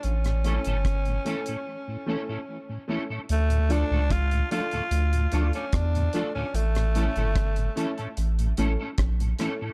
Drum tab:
HH |xxxxxxxx--------|xxx-xxxxxxxxxxx-|xxxxxxxxxxx-xxx-|
SD |-r--r-----------|----r-------r---|-r--r-------r-r-|
BD |----o-----------|----o-------o---|----o-------o---|